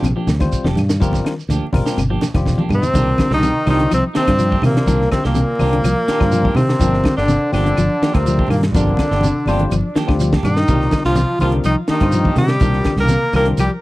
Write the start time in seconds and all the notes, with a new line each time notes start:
0.02 A#1 C3, closed hi-hat, low conga, claves, shekere
0.16 F3 A#3 D4 G4
0.27 D2, snare, closed hi-hat, high conga, shekere
0.39 D#3 G3 C4 F4 C5, kick, snare, closed hi-hat, claves, shekere
0.52 kick, closed hi-hat, shekere
0.64 F1 F3 A#3 D4 G4, snare, high conga
0.75 G2, snare, closed hi-hat, high conga, low conga, claves, shekere
0.89 D#3, snare, closed hi-hat, shekere
1.00 G1 F3 G3 A#3 C4 F4 G4 A#4, muted clean electric guitar stroke, kick, closed hi-hat, shekere
1.13 kick, snare, high conga, shekere
1.25 D#3, snare, closed hi-hat, claves
1.40 shekere
1.49 D2 D3 F3 A#3 D4 G4, closed hi-hat, shekere
1.72 G1 C3 G3 C4 F4 A#4, kick, open hi-hat, high conga, low conga, claves, shekere
1.86 A#3 D4 G4, snare, shekere
1.97 G1 C3, closed hi-hat, low conga, claves, shekere
2.10 F3 A#3 D4 G4
2.21 snare, closed hi-hat, high conga, shekere
2.34 F1 D#3 G3 C4 F4 G4, kick, snare, closed hi-hat, claves, shekere
2.45 kick, snare, high conga, low conga, shekere
2.58 F3 A#3 D4 G4, high tom, high conga
2.69 G2, mid tom, low conga, claves, shekere
2.74 C3 C4
2.82 D#3, floor tom, shekere
2.94 C2 D#3 G3 A#3 C4 D4 F4 G4 A#4, kick, closed hi-hat, low conga, shekere
3.18 D3, kick, snare, closed hi-hat, high conga, claves, shekere
3.30 C2 D#3 A#3 D4 D#4 G4, snare, low conga
3.36 D#4
3.43 C3, closed hi-hat, high conga, shekere
3.66 C2 D#3 G3 A#3 C4 D4 D#4 F4 G4 C5, open hi-hat, high conga, claves, shekere
3.70 D#4
3.80 D3, closed hi-hat
3.91 C2 C3 F3 C4, snare, closed hi-hat, claves, shekere
4.14 C3 D#3 A#3 C4 D4 G4, muted fingered electric bass stroke, snare, closed hi-hat, shekere
4.18 C4
4.27 G2 D3 G3 C4 F4 G4, kick, snare, closed hi-hat, claves
4.39 F3, closed hi-hat, shekere
4.51 A#3 D4 G4, kick, high conga
4.62 A#2 C3 D#3 A#3, open hi-hat, low conga, claves, shekere
4.67 A#3
4.74 snare, closed hi-hat, high conga
4.86 C2 D#3 G3 A#3 C4 D4 F4 A#4, muted clean electric guitar stroke, kick, closed hi-hat, low conga, shekere
5.01 snare
5.11 C3 D3 C4, kick, snare, closed hi-hat, high conga, claves, shekere
5.24 C2 A#2 A#3 D4 G4, snare
5.35 C3, closed hi-hat, high conga, shekere
5.59 C2 D#3 G3 A#3 C4 D4 F4 G4 A#4, open hi-hat, high conga, claves, shekere
5.73 D3, closed hi-hat
5.84 C2 F3, closed hi-hat, claves, shekere
6.08 D#3 A#3 D4 G4, muted fingered electric bass stroke, snare, closed hi-hat, shekere
6.20 G2 D3 G3 C4 F4 A#4, kick, snare, claves
6.32 F3, closed hi-hat, shekere
6.43 A#3 D4 G4, kick, high conga
6.55 C3 D#3 C4, open hi-hat, low conga, claves, shekere
6.69 snare
6.79 G1 F3 G3 A#3 C4 D4 F4 A#4, muted clean electric guitar stroke, kick, snare, closed hi-hat, low conga, shekere
6.93 snare
7.04 D3, kick, snare, closed hi-hat, high conga, claves, shekere
7.17 G1 D3 A#3 D4 G4, snare
7.28 C3, snare, closed hi-hat, high conga, shekere
7.51 G1 D3 F3 G3 A#3 C4 D4 F4 G4, snare, open hi-hat, high conga, claves, shekere
7.65 D3, closed hi-hat
7.77 G1 F3, closed hi-hat, claves, shekere
8.02 D#3 F3 A#3 D4 G4, muted fingered electric bass stroke, snare, closed hi-hat, shekere
8.14 D2 C3 D3 G3 C4 F4 A#4, kick, snare, closed hi-hat, claves
8.26 F3, closed hi-hat, shekere
8.37 A#3 D4 G4, kick, high conga
8.48 G2 A#2 D#3 A#3, open hi-hat, low conga, claves
8.52 shekere
8.61 snare, closed hi-hat, high conga
8.72 G1 D3 F3 G3 A#3 C4 D4 F4 A#4, kick, closed hi-hat, low conga, shekere
8.76 G4
8.87 kick
8.97 D3, kick, snare, closed hi-hat, high conga, claves, shekere
9.11 G1 A#3 D4 G4, snare
9.21 C3, closed hi-hat, high conga, shekere
9.46 G1 F3 G3 A#3 C4 D4 F4 G4 C5, open hi-hat, high conga, claves, shekere
9.59 D3, closed hi-hat, high conga
9.70 G1 F3, closed hi-hat, high conga, claves, shekere
9.95 D#3 F3 A#3 D4 G4, muted fingered electric bass stroke, snare, closed hi-hat, shekere
10.07 D2 D3 G3 C4 F4 G4, kick, snare, claves
10.20 F3, closed hi-hat, shekere
10.32 A#3 D4 G4, kick, snare, high conga
10.43 G2 D#3 D#4, closed hi-hat, low conga, claves, shekere
10.47 D#4
10.57 snare
10.68 C2 D#3 G3 A#3 C4 F4 G4 A#4, muted clean electric guitar stroke, kick, closed hi-hat, low conga, shekere
10.82 snare
10.91 D3, kick, snare, closed hi-hat, high conga, claves, shekere
11.05 C2 F3 A#3 D4 F4 G4, snare
11.16 C3, closed hi-hat, high conga, shekere
11.39 C2 D#3 F3 G3 A#3 C4 D4 F4 G4 A#4, open hi-hat, high conga, claves, shekere
11.44 F4
11.51 D3, closed hi-hat, high conga
11.64 C2 D#3 F3 D#4, closed hi-hat, claves, shekere
11.69 D#4
11.88 D#3 A#3 D4 D#4 G4, muted fingered electric bass stroke, snare, closed hi-hat, shekere
11.93 D#4
12.00 G2 D3 G3 C4 F4 C5, kick, snare, closed hi-hat, claves
12.12 F3, closed hi-hat, shekere
12.24 A#3 D4 G4, kick, high conga
12.35 C3 D#3 G4, open hi-hat, low conga, claves, shekere
12.40 G3 G4
12.48 snare, closed hi-hat
12.60 C2 D#3 G3 A#3 C4 D4 F4 G4 A#4, kick, closed hi-hat, low conga, shekere
12.73 snare
12.84 D3, kick, snare, closed hi-hat, high conga, claves, shekere
12.96 C2 A#3 D4 G4 A#4, snare, low conga
13.01 A#3 A#4
13.08 C3, closed hi-hat, high conga, shekere
13.33 C2 D#3 G3 A#3 C4 D4 F4 G4 A#4, muted clean electric guitar stroke, open hi-hat, high conga, claves, shekere
13.45 D3, closed hi-hat
13.57 C2 F3 G3 G4, closed hi-hat, claves, shekere
13.62 G4